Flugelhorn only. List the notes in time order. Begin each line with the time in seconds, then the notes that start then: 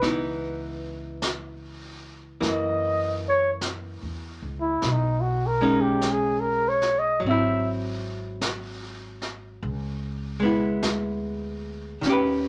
2.50 D#5
3.28 C#5
4.61 E4
4.92 D#4
5.21 F#4
5.47 A#4
5.81 G4
6.11 G#4
6.40 A#4
6.69 C#5
6.99 D#5
7.29 E5